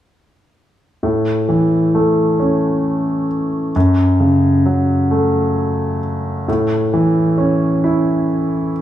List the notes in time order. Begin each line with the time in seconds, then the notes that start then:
1.03 A2
1.49 E3
1.95 A3
2.40 C#4
3.76 F#2
4.20 C#3
4.66 F#3
5.11 A3
6.48 A2
6.94 E3
7.38 C#4
7.84 E4